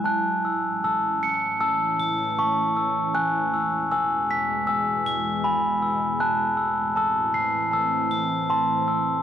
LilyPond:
<<
  \new Staff \with { instrumentName = "Glockenspiel" } { \time 4/4 \key a \lydian \tempo 4 = 78 << { fis'''4 e'''4 e'''4 cis'''8. r16 | fis'''4 e'''4 e'''4 b''8. r16 | fis'''4 e'''4 e'''4 c'''8. r16 | } \\ { a''8 e'''8 a''8 cis''''8 a''8 a''''8 a''8 e'''8 | gis''8 e'''8 gis''8 b'''8 gis''8 gis''''8 gis''8 e'''8 | a''8 e'''8 a''8 c''''8 a''8 a''''8 a''8 e'''8 | } >> }
  \new Staff \with { instrumentName = "Ambient pad" } { \clef bass \time 4/4 \key a \lydian <a, e cis'>1 | <e, b, gis>1 | <a, e c'>1 | }
>>